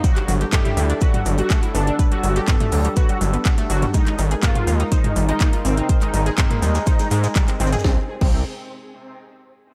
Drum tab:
CC |--------------------------------|--------------------------------|--------------------------------|--------------------------------|
HH |x-x-o-x-x-x-o-x-x-x-o-x-x-x-o-x-|x-x-o-x-x-x-o-x-x-x-o-x-x-x-o-x-|x-x-o-x-x-x-o-x-x-x-o-x-x-x-o-x-|x-x-o-x-x-x-o-x-x-x-o-x-x-x-o-x-|
SH |x---x---x---x---x---x---x---x---|x---x---x-------x---x---x---x---|x---x---x---x---x---x---x---x---|x---x---x---x-x-x-x-x-x-x---xxxx|
CP |--x-----x---------------x-------|--------x---------------x-------|--x-----x---------------x-------|--x-----x---------------x-x-----|
SD |--o---o-o---------------o---o---|------o-o---------------o-o---o-|--o---o-o---------------o-------|------o-o---o-o-o-o-o-o-o-o-oooo|
T2 |--------o-o-------o-------------|--------o-o-------------------o-|--------o-o-------o-------------|--------o-o-------------------o-|
BD |o-------o-------o-------o-------|o-------o-------o-------o-------|o-------o-------o-------o-------|o-------o-------o-------o-------|

CC |------x-------------------------|
HH |--------------------------------|
SH |--------------------------------|
CP |--------------------------------|
SD |o-------------------------------|
T2 |--------------------------------|
BD |o-----o-------------------------|